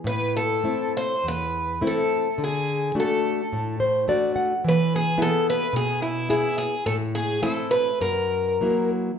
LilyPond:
<<
  \new Staff \with { instrumentName = "Twelve-string acoustic guitar" } { \time 4/4 \key a \minor \tempo 4 = 106 b'8 a'4 c''8 b'4 a'4 | gis'4 a'4. r4. | b'8 gis'8 a'8 b'8 gis'8 e'8 e'8 gis'8 | a'8 gis'8 a'8 b'8 ais'4. r8 | }
  \new Staff \with { instrumentName = "Nylon-string guitar" } { \time 4/4 \key a \minor << { r1 | r2 r8 c''8 d''8 fis''8 | r1 | r1 | } \\ { a,4 <a c' e'>4 e,4 <a c' e'>4 | d4 <a d' fis'>4 a,4 <a d' fis'>4 | e4 <b e' gis'>4 b,4 <b e' gis'>4 | a,4 <a c' e'>4 fis,4 <fis ais e'>4 | } >> }
>>